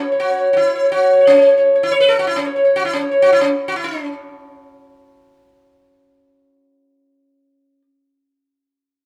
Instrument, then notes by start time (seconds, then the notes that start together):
sitar
0.01 C#5
0.12 C#5
0.20 F#4
0.30 C#5
0.39 C#5
0.53 E4 F#4
0.67 C#5
0.76 C#5
0.84 C#5
0.92 F#4
1.02 C#5
1.13 C#5
1.21 C#5
1.27 C#4
1.38 C#5
1.48 C#5
1.58 C#5
1.75 C#5
1.83 E4
1.91 C#5
2.00 B4
2.08 A4
2.19 F#4
2.27 E4
2.36 C#4
2.46 C#5
2.56 C#5
2.65 C#5
2.76 F#4
2.85 E4
2.93 C#4
3.02 C#5
3.11 C#5
3.22 F#4
3.33 E4
3.41 C#4
3.68 F#4
3.76 E4
3.84 C#4